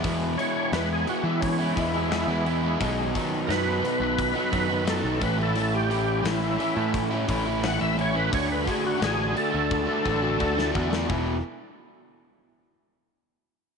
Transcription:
<<
  \new Staff \with { instrumentName = "Tonewheel organ" } { \time 4/4 \key e \major \tempo 4 = 87 r8 cis''8 b'16 gis'16 fis'16 e'16 cis'8 e'4. | r4 <ais' b'>2 a'8 b'16 a'16~ | a'16 g'8. e'4 r4 fis''16 e''16 cis''16 b'16 | cis''16 b'16 gis'16 fis'16 gis'8 a'2 r8 |
r1 | }
  \new Staff \with { instrumentName = "Tonewheel organ" } { \clef bass \time 4/4 \key e \major r2 r8 gis4.~ | gis8 r2. r8 | r1 | r1 |
r1 | }
  \new Staff \with { instrumentName = "Overdriven electric guitar" } { \time 4/4 \key e \major <e gis b e'>8 <e gis b e'>8 <e gis b e'>8 <e gis b e'>16 <gis b e'>8 <gis b e'>16 <e gis b e'>16 <gis b e'>16 <e gis b e'>16 <gis b e'>16 <e gis b e'>16 <gis b e'>16 | <b, dis fis b dis'>8 <dis fis b dis'>8 <b, dis fis b dis'>8 <dis fis b dis'>16 <fis b dis'>8 <fis b dis'>16 <dis fis b dis'>16 <fis b dis'>16 <b, dis fis b dis'>16 <fis b dis'>16 <a, e a cis' e'>16 <a cis' e'>16 | <a, e a cis' e'>8 <e a cis' e'>8 <a, e a cis' e'>8 <e a cis' e'>16 <a cis' e'>8 <a cis' e'>16 <e a cis' e'>16 <a cis' e'>16 <a, e a cis' e'>16 <a cis' e'>16 <e a cis' e'>16 <a cis' e'>16 | <d a d' fis'>8 <d a d' fis'>8 <d a d' fis'>8 <d a d' fis'>16 <a d' fis'>8 <a d' fis'>16 <d a d' fis'>16 <a d' fis'>16 <d a d' fis'>16 <a d' fis'>16 <d a d' fis'>16 <a d' fis'>16 |
<e, b, e>8 r2. r8 | }
  \new Staff \with { instrumentName = "Picked electric bass" } { \clef bass \time 4/4 \key e \major e,8 r8 e,8 r16 e8. e,8. e,8. | b,,8 r8 fis,8 r16 b,,8 r16 fis,8. b,,16 a,,8~ | a,,4 a,,8 r16 a,8. a,,8. a,,8. | d,8 r8 a,,8 r16 d,8 r16 a,,8 d,8 e,8 |
e,,8 r2. r8 | }
  \new DrumStaff \with { instrumentName = "Drums" } \drummode { \time 4/4 <hho bd>8 hho8 <hho sn>8 hho8 <hho bd>8 <hho bd>8 <hho sn>8 hho8 | <hho bd>8 <hho bd>8 <hho sn>8 hho8 <hho bd>8 <hho bd>8 <hho sn>8 <hho bd>8 | hho8 hho8 <hho sn>8 hho8 <hho bd>8 <hho bd>8 <hho sn>8 hho8 | <hho bd>8 <hho bd>8 <hho sn>8 hho8 bd8 bd8 bd16 sn16 bd16 sn16 |
bd4 r4 r4 r4 | }
>>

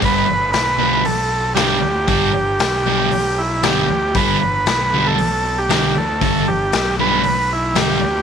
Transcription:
<<
  \new Staff \with { instrumentName = "Transistor combo organ" } { \time 4/4 \key g \major \tempo 4 = 116 b'4 b'4 a'4 g'4 | g'2~ g'8 e'8 g'4 | b'4 b'8. a'4 g'8. a'8~ | a'8 g'4 b'4 e'8 g'4 | }
  \new Staff \with { instrumentName = "Distorted electric guitar" } { \clef bass \time 4/4 \key g \major <g, d g>8 r4 <g, d g>8 r4 <g, d g>8 r8 | <g, d g>8 r4 <g, d g>8 r4 <g, d g>8 r8 | <g, d g>8 r4 <g, d g>8 r4 <g, d g>8 r8 | <g, d g>8 r4 <g, d g>8 r4 <g, d g>8 r8 | }
  \new Staff \with { instrumentName = "Picked electric bass" } { \clef bass \time 4/4 \key g \major g,,4 b,,4 b,,4 b,,8 d,8 | g,,4 b,,4 b,,4 b,,8 d,8 | g,,4 b,,4 b,,4 b,,8 d,8 | g,,4 b,,4 b,,4 b,,8 d,8 | }
  \new DrumStaff \with { instrumentName = "Drums" } \drummode { \time 4/4 <hho bd>4 <hho sn>4 hho4 <hho sn>4 | <hho bd>4 <hho sn>4 hho4 <hho sn>4 | <hho bd>4 <hho sn>4 hho4 <hho sn>4 | <hho bd>4 <hho sn>4 hho4 <hho sn>4 | }
>>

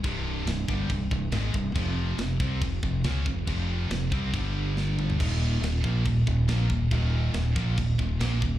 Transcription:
<<
  \new Staff \with { instrumentName = "Distorted electric guitar" } { \clef bass \time 4/4 \key ees \major \tempo 4 = 140 <c, g, c>4 <c, g,>8 <g, d g>8 <c, g,>8 <c, g,>8 <aes, ees aes>8 <c, g,>8 | <f, c f>4 <f, c>8 <c g c'>8 <f, c>8 <f, c>8 <des aes des'>8 <f, c>8 | <f, c f>4 <f, c>8 <c g c'>8 <g, d g>2 | <ees, bes, ees>4 <ees, bes,>8 <bes, f bes>8 <ees, bes,>8 <ees, bes,>8 <bes, f bes>8 <ees, bes,>8 |
<ees, bes, ees>4 <ees, bes,>8 <bes, f bes>8 <ees, bes,>8 <ees, bes,>8 <bes, f bes>8 <ees, bes,>8 | }
  \new Staff \with { instrumentName = "Distorted electric guitar" } { \clef bass \time 4/4 \key ees \major <c, g, c>4 <c, g,>8 <g, d g>8 <c, g,>8 <c, g,>8 <aes, ees aes>8 <c, g,>8 | <f, c f>4 <f, c>8 <c g c'>8 <f, c>8 <f, c>8 <des aes des'>8 <f, c>8 | <f, c f>4 <f, c>8 <c g c'>8 <g, d g>2 | <ees, bes, ees>4 <ees, bes,>8 <bes, f bes>8 <ees, bes,>8 <ees, bes,>8 <bes, f bes>8 <ees, bes,>8 |
<ees, bes, ees>4 <ees, bes,>8 <bes, f bes>8 <ees, bes,>8 <ees, bes,>8 <bes, f bes>8 <ees, bes,>8 | }
  \new Staff \with { instrumentName = "Distorted electric guitar" } { \clef bass \time 4/4 \key ees \major <c, g, c>4 <c, g,>8 <g, d g>8 <c, g,>8 <c, g,>8 <aes, ees aes>8 <c, g,>8 | <f, c f>4 <f, c>8 <c g c'>8 <f, c>8 <f, c>8 <des aes des'>8 <f, c>8 | <f, c f>4 <f, c>8 <c g c'>8 <g, d g>2 | <ees, bes, ees>4 <ees, bes,>8 <bes, f bes>8 <ees, bes,>8 <ees, bes,>8 <bes, f bes>8 <ees, bes,>8 |
<ees, bes, ees>4 <ees, bes,>8 <bes, f bes>8 <ees, bes,>8 <ees, bes,>8 <bes, f bes>8 <ees, bes,>8 | }
  \new Staff \with { instrumentName = "Fingered electric bass" } { \clef bass \time 4/4 \key ees \major c,,4 c,,8 g,,8 c,,8 c,,8 aes,,8 c,,8 | f,,4 f,,8 c,8 f,,8 f,,8 des,8 f,,8 | f,,4 f,,8 c,8 g,,2 | ees,,4 ees,,8 bes,,8 ees,,8 ees,,8 bes,,8 ees,,8 |
ees,,4 ees,,8 bes,,8 ees,,8 ees,,8 bes,,8 ees,,8 | }
  \new DrumStaff \with { instrumentName = "Drums" } \drummode { \time 4/4 <cymc bd>4 <cymc sn>8 bd8 <cymc bd>8 bd8 <cymc sn>8 bd8 | <cymc bd>4 <cymc sn>8 bd8 <cymc bd>8 bd8 <cymc sn>8 bd8 | <cymc bd>4 <cymc sn>8 bd8 <cymc bd>4 sn8 toml16 tomfh16 | <cymc bd>4 <cymc sn>8 bd8 <cymc bd>8 bd8 <cymc sn>8 bd8 |
<cymc bd>4 <cymc sn>8 bd8 <cymc bd>8 bd8 <cymc sn>8 bd8 | }
>>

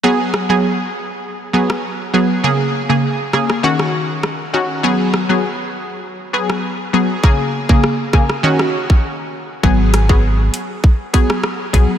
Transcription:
<<
  \new Staff \with { instrumentName = "Synth pluck" } { \time 4/4 \key gis \minor \tempo 4 = 100 <fis b gis'>8. <fis b gis'>16 r4. <fis b gis'>16 r8. <fis b gis'>16 r16 | <cis ais gis'>16 r8 <cis ais gis'>16 r8 <cis ais gis'>16 r16 <dis cis' fis'>4. <dis cis' fis'>8 | <fis b gis'>8. <fis b gis'>16 r4. <fis b gis'>16 r8. <fis b gis'>16 r16 | <cis ais gis'>16 r8 <cis ais gis'>16 r8 <cis ais gis'>16 r16 <dis cis' fis'>4 r4 |
<fis b gis'>8. <fis b gis'>16 r4. <fis b gis'>16 r8. <fis b gis'>16 r16 | }
  \new Staff \with { instrumentName = "FM bass" } { \clef bass \time 4/4 \key gis \minor r1 | r1 | r1 | r1 |
gis,,4. r2 b,,16 r16 | }
  \new DrumStaff \with { instrumentName = "Drums" } \drummode { \time 4/4 r8 ss8 r4 r8. ss16 r4 | r4 r8 ss16 ss16 r16 ss8. ss4 | r8 ss8 r4 r8. ss16 r4 | bd8. bd16 ss8 <bd ss>16 ss16 r16 ss8 bd16 r4 |
bd8 <hh ss>16 bd16 r8 hh8 bd8 <hh bd>16 ss16 ss8 <hh bd>8 | }
>>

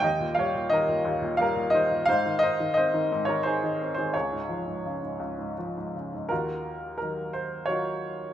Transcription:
<<
  \new Staff \with { instrumentName = "Grand piano" } { \time 3/4 \key ees \dorian \tempo 4 = 87 << { g''8 f''8 ees''4 f''8 ees''8 | f''8 ees''8 ees''8. des''16 c''8. c''16 | des''2 r4 | bes'4 bes'8 c''8 des''4 | } \\ { ees''8 des''8 bes'4 bes'8 c''8 | c''8 c''8 c''8. bes'16 aes'8. aes'16 | aes'2 r4 | <f' ges'>4. r8 <f' ges'>4 | } >> }
  \new Staff \with { instrumentName = "Grand piano" } { \clef bass \time 3/4 \key ees \dorian ees,16 bes,16 g16 bes,16 ees16 bes,16 ees,16 bes,16 g16 bes,16 ees16 bes,16 | aes,16 ees16 ees'16 ees16 c'16 ees16 aes,16 ees16 ees'16 ees16 c'16 ees16 | des,16 aes,16 f16 aes,16 des16 aes,16 des,16 aes,16 f16 aes,16 des16 aes,16 | ees,4 <ees ges ees'>4 <ees ges ees'>4 | }
>>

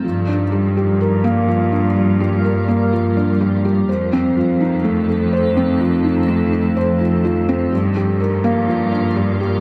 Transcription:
<<
  \new Staff \with { instrumentName = "Ambient pad" } { \time 4/4 \key g \minor \tempo 4 = 125 <g f' bes'>1~ | <g f' bes'>1 | <f ees' a'>1~ | <f ees' a'>1 |
<g f' bes'>1 | }
  \new Staff \with { instrumentName = "Felt piano" } { \time 4/4 \key g \minor f8 d'8 g8 g'8 bes'8 bes8 f8 d'8 | g8 g'8 bes'8 bes8 f8 d'8 g8 g'8 | c''8 c'8 f8 ees'8 a8 a'8 c''8 c'8 | f8 ees'8 a8 a'8 c''8 f8 f8 c'8 |
g8 g'8 bes'8 bes8 f8 d'8 g8 g'8 | }
  \new Staff \with { instrumentName = "Cello section" } { \clef bass \time 4/4 \key g \minor g,1~ | g,1 | f,1~ | f,1 |
g,1 | }
>>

